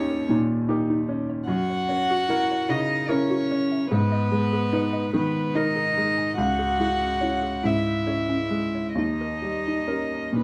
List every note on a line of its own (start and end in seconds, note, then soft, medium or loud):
0.00 1.45 D#2 medium
0.00 0.13 C#4 soft
0.00 0.29 C#4 medium
0.00 0.25 D#4 soft
0.00 0.26 G4 soft
0.00 0.29 C#5 medium
0.10 0.22 A#4 medium
0.29 0.93 A#2 soft
0.29 0.42 D#4 medium
0.69 1.04 D#4 soft
0.69 1.04 G4 soft
0.69 0.82 A#4 medium
0.90 1.01 D#4 medium
1.09 1.48 C#4 soft
1.30 1.41 C#5 medium
1.47 3.86 F#2 medium
1.47 1.61 F#4 medium
1.47 2.72 F#4 medium
1.47 2.71 F#5 medium
1.70 1.82 C#5 medium
1.89 2.54 C#4 soft
1.89 2.02 A#4 medium
2.11 2.22 F#4 medium
2.29 2.66 E4 soft
2.29 2.66 A#4 soft
2.29 2.43 A#4 medium
2.51 2.63 C#5 medium
2.69 3.34 C#3 soft
2.69 3.13 D#4 medium
2.69 2.82 F#4 medium
2.69 3.12 D#5 medium
3.09 3.91 C#4 medium
3.09 3.46 E4 soft
3.09 3.46 A#4 medium
3.09 3.90 C#5 medium
3.09 3.22 C#5 medium
3.30 3.42 F#4 medium
3.51 3.91 C#4 soft
3.72 3.83 E5 medium
3.91 6.34 G#2 medium
3.91 5.11 B3 medium
3.91 4.03 G#4 medium
3.91 5.11 B4 medium
4.12 4.24 D#5 medium
4.32 4.97 G#3 soft
4.32 4.44 B4 soft
4.53 4.65 G#4 medium
4.72 5.09 D#4 soft
4.72 4.84 B4 medium
4.72 5.10 B4 soft
4.93 5.05 D#5 medium
5.13 5.80 D#3 soft
5.13 5.56 B3 medium
5.13 5.26 G#4 medium
5.13 5.57 B4 medium
5.55 6.38 D#4 medium
5.55 5.93 D#4 soft
5.55 5.93 A#4 soft
5.55 6.37 D#5 medium
5.55 5.68 D#5 medium
5.76 5.88 G#4 medium
5.97 6.38 G#3 soft
6.18 6.30 G#5 soft
6.38 8.94 C#2 medium
6.38 6.50 C#4 medium
6.38 7.65 F#4 medium
6.38 7.67 F#5 medium
6.59 6.71 G#4 medium
6.79 7.47 G#3 soft
6.79 6.93 E4 soft
7.01 7.13 C#4 medium
7.21 7.59 C#4 soft
7.21 7.35 E4 medium
7.21 7.60 C#5 soft
7.43 7.56 G#4 medium
7.63 8.34 G#2 soft
7.63 7.77 C#4 medium
7.63 8.99 E4 medium
7.63 8.97 E5 medium
8.07 8.48 C#4 soft
8.07 8.21 G#4 medium
8.07 8.48 C#5 soft
8.29 8.43 C#4 medium
8.50 8.97 G#3 soft
8.75 8.89 C#5 soft
8.95 10.43 D#2 soft
8.95 10.43 D#4 medium
8.95 9.12 D#4 medium
8.95 10.33 D#5 soft
9.21 9.35 A#4 soft
9.42 10.17 G3 soft
9.42 9.58 G4 soft
9.68 9.81 D#4 medium
9.87 10.30 C#4 soft
9.87 10.04 G4 soft
9.87 10.31 A#4 soft
10.14 10.27 A#4 soft
10.32 10.43 A#2 soft
10.32 10.43 D#4 medium
10.37 10.43 B4 soft